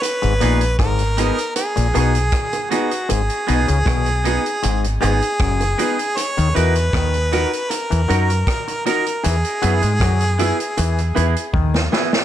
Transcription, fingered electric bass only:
\new Staff \with { instrumentName = "Fingered electric bass" } { \clef bass \time 4/4 \key gis \minor \tempo 4 = 78 r16 gis,,16 ais,,8 gis,,8. r8 ais,,16 b,,8 r4 | gis,,16 r16 b,,16 cis,16 b,,8. r16 gis,,8 gis,,16 r16 fis,,8 r8 | r16 dis,16 e,8 dis,8. r8 e,16 fis,8 r4 | e,16 r16 fis,16 gis,16 fis,8. r16 e,8 e,16 r16 dis,8 r8 | }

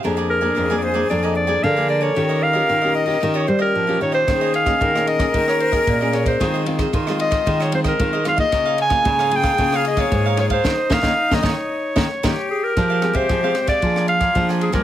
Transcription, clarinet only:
\new Staff \with { instrumentName = "Clarinet" } { \time 4/4 \key ees \mixolydian \tempo 4 = 113 r8 bes'8.~ bes'32 d''32 c''8 d''16 ees''16 d''8 f''8 d''16 des''16~ | des''8 f''4 ees''8. des''16 c''16 bes'8. des''16 c''16~ | c''8 f''4 ees''8. des''16 c''16 bes'8. des''16 c''16~ | c''8 r4 ees''8. des''16 c''16 bes'8. f''16 ees''16~ |
ees''8 aes''4 g''8. f''16 ees''16 des''8. des''16 c''16~ | c''8 f''8. ees''16 des''2 aes'16 bes'16~ | \key f \minor bes'8. c''4 d''8. f''4 aes'16 bes'16 | }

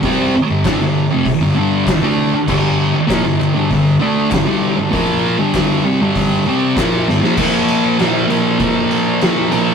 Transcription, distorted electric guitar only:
\new Staff \with { instrumentName = "Distorted electric guitar" } { \clef bass \time 4/4 \key g \minor \tempo 4 = 98 <c g c'>8 r16 <g, d>16 <g, d>16 <g, d>8 <f, c>16 r16 <g, d>16 <g, d g>8 r16 <d a d'>8 r16 | <g, d g>8. r16 <bes, f>16 <g, d>16 <g, d>16 <g, d>16 <g, d>8 <d a d'>8 <g, d>16 <g, d g>8 <g, d>16 | <bes, f bes>8. <g, d g>8. <c g>16 <g, d g>8. <c g c'>8 <bes, f bes>8 <g, d>16 <bes, f>16 | <bes, f bes>4 <bes, f bes>8 <bes, f bes>8 <bes, f bes>4 <bes, f bes>8 <bes, f bes>8 | }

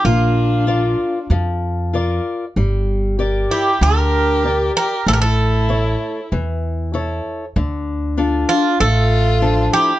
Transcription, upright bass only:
\new Staff \with { instrumentName = "Upright bass" } { \clef bass \time 4/4 \key d \minor \tempo 4 = 96 bes,,2 f,2 | g,,2 d,2 | a,,2 e,2 | d,2 a,,2 | }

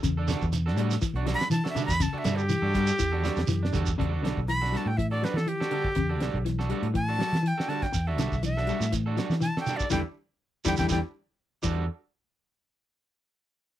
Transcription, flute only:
\new Staff \with { instrumentName = "Flute" } { \time 4/4 \key e \dorian \tempo 4 = 122 r2 \tuplet 3/2 { r4 b''8 a''8 e''8 b''8 } | \tuplet 3/2 { a''8 e''8 g'8~ } g'2~ g'8. r16 | r4 b''8 a''16 g''16 e''16 d''16 b'16 a'16 g'4~ | g'4 r4 a''4 g''8 a''16 g''16~ |
g''16 e''8. e''4 r4 \tuplet 3/2 { a''8 g''8 d''8 } | g''16 r4 r16 g''16 g''16 g''16 r4. r16 | r1 | }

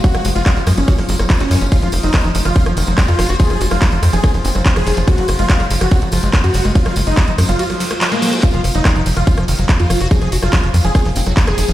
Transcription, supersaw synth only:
\new Staff \with { instrumentName = "Supersaw synth" } { \time 4/4 \key f \phrygian \tempo 4 = 143 ges'8 r16 f'8 r8 des'8 r4 des'8 r16 | f'8 r16 ees'8 r8 f'8 r4 f'8 r16 | aes'8 r16 f'8 r8 aes'8 r4 aes'8 r16 | ges'8 r16 f'8 r8 ges'8 r4 ges'8 r16 |
f'8 r16 ees'8 r8 f'8 r4 bes8 r16 | f'8 r16 ees'8 r8 f'8 r4 f'8 r16 | aes'8 r16 f'8 r8 aes'8 r4 aes'8 r16 | }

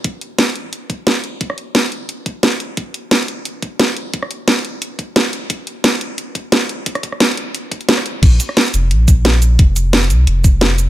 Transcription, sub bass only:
\new Staff \with { instrumentName = "Sub bass" } { \clef bass \time 4/4 \key ees \lydian \tempo 4 = 176 ees,,4. bes,,8 r2 | r4. aes,,8 r4. ees,,8 | bes,,8 r4 f,,8 bes,,2 | f,,4. c,8 f,,2 |
ees,,4. bes,,8 r2 | r4. aes,,8 r4 aes,,8 ees,8 | bes,,8 r4 f,,8 bes,,2 | f,,4. c,8 f,,2 | }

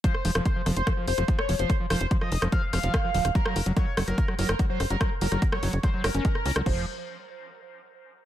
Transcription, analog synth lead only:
\new Staff \with { instrumentName = "Analog synth lead" } { \time 4/4 \key des \major \tempo 4 = 145 c''8 r8 c''8 r16 c''8 r16 c''8 r16 des''16 r16 c''16~ | c''16 r16 c''8 r16 ees''8 r16 f''16 r16 f''4~ f''16 r16 | bes'8 r8 des''8 r16 bes'8 r16 bes'8 r16 c''16 r16 bes'16~ | bes'16 r16 bes'8 r16 des''8 r16 c''16 r16 bes'4~ bes'16 r16 |
c''8 r2. r8 | }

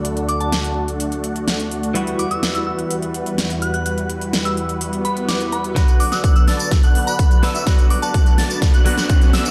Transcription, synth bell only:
\new Staff \with { instrumentName = "Synth bell" } { \time 4/4 \key b \minor \tempo 4 = 126 r8 d'''16 a''4 r2 r16 | r8 d'''16 e'''16 r16 e'''16 e'''16 r4. r16 fis'''16 fis'''16 | fis'''16 r4 e'''16 r4 b''16 r16 d'''16 r16 b''8 | r8 d'''16 e'''16 r16 e'''16 e'''16 r4 b''4 r16 |
r8 d'''16 a''4 r2 r16 | }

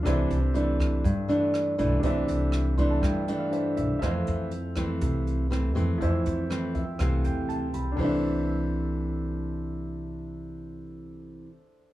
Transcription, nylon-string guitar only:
\new Staff \with { instrumentName = "Nylon-string guitar" } { \time 4/4 \key c \major \tempo 4 = 121 << { <e a d'>8 r8 <e a d'>4 r8 <e a d'>4 <e a d'>8 | <e a d'>4. <e a d'>4 <e a d'>4. | <e a c'>4 r8 <e a c'>4. <e a c'>8 <e a c'>8~ | <e a c'>4 <e a c'>8 r8 <e a c'>4. r8 |
<c e a d'>1~ | <c e a d'>1 | } \\ { c2 g,2 | c2 g,2 | f,2 c2 | f,2 c2 |
r1 | r1 | } >> }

